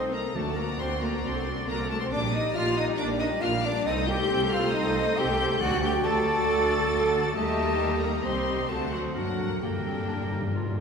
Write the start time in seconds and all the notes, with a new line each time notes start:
Already playing: C2 C4 A4 C5 D#5
0.00 A3 A4 C5
0.10 A#3 C4 D#4 A#4 A#5
0.15 A4 C5
0.21 A3 C4
0.26 A4 C5
0.34 D2 D3 F#3 A3 D4 F#4 A4 D5 A5
0.44 A3 F#4 D5
0.55 F#3 A#3 D4 A4 A#4 A#5
0.66 A3 F#4 D5
0.77 D2 F#3 C4 D4 A4 C5 C6
0.88 A3 F#4 D5
1.00 F#3 A#3 D4 A4 A#4 A#5
1.11 A3 F#4 D5
1.22 C2 F#3 C4 D4 A4 C5 C6
1.33 A3 C4 F#4 C5
1.44 F#3 D4 A4
1.56 A3 C4 F#4 C5
1.67 C2 F#3 A#3 D4 A4 A#4 A#5
1.78 A3 C4 F#4 C5
1.89 F#3 A3 D4 A4 A5
1.99 A3 C4 F#4 C5 C6
2.10 A#1 A#3 D4 G4 A#4 D5 D6
2.20 G3 A#3 G4 D5
2.31 A#3 D4 D#4 A#4 D#5 D#6
2.43 G3 A#3 G4 D5
2.53 A#1 A#3 D4 F4 A#4 F5 F6
2.64 G3 A#3 G4 D5
2.76 A#3 D4 D#4 A#4 D#5 D#6
2.87 G3 A#3 G4 D5
2.95 A#3 D4 A#4 D6
2.99 A#1 D4 D5
3.08 G3 A#3 G4 D5
3.19 A#3 D4 D#4 A#4 D#5 D#6
3.31 G3 A#3 G4 D5
3.40 A#1 A#3 D4 F4 A#4 F5 F6
3.52 G3 A#3 G4 D5
3.64 A#3 D4 A#4 D5 D6
3.74 G3 A#3 G4 D5
3.85 C2 C4 D#4 A4 C5 D#5 D#6
3.97 A3 D#4 C5
4.06 C4 G4 A4 G5 G6
4.19 A3 D#4 C5
4.30 C2 C4 A4
4.42 A3 D#4 C5
4.51 C4 F4 A4 F5 F6
4.63 A3 D#4 C5
4.72 C2 C4 D#4 A4 D#5 D#6
4.76 C4
4.85 A3 D#4 C5
4.95 C4 A4
5.07 A3 D#4 C5
5.17 C2 C4 G4 A4 G5 G6
5.29 A3 D#4 C5
5.40 C4 A4
5.50 A3 D#4 C5
5.60 D2 D3 A3 F#4 A4 D5 F#5 F#6
5.71 F#3 D4 F#4
5.82 D3 A3 F#4 G4 A4 G5 G6
5.93 F#3 D4 F#4
6.03 D2 D3 A3 F#4 A4 A5 A6
6.14 F#3 D4 F#4
6.25 D3 A3 F#4 A4
6.37 F#3 D4 F#4
6.48 D2 D3 A3 F#4 A4
6.58 F#3 D4 F#4
6.69 D3 A3 F#4 A4
6.80 F#3 D4 F#4
6.91 D2 D3 A3 F#4 A4
7.02 F#3 D4 F#4
7.12 D3 A3 F#4 A4
7.24 F#3 D4 F#4
7.34 D#2 G3 A3 A#3 D#4 G4 A4 D#5 A5
8.01 A#3 A#4 A#5
8.24 C2 G3 C4 D#4 G4 C5 D#5 C6
8.69 D2 D3 A3 C4 D4 F#4 A4 C5 A5
8.91 F#3 F#4 F#5
9.15 G2 D3 F#3 A#3 D4 F#4 A#4 F#5
9.23 G2
9.31 G2
9.39 G2
9.47 G2
9.55 G2
9.62 G2 D3 G3 A#3 D4 G4 A#4 G5
9.70 G2
9.78 G2
9.86 G2 C4
9.94 G2
10.01 G2
10.08 G2 D4
10.16 G2
10.25 G2
10.32 G2 D#4
10.40 G2
10.48 G2
10.55 G2 F4
10.63 G2
10.70 G2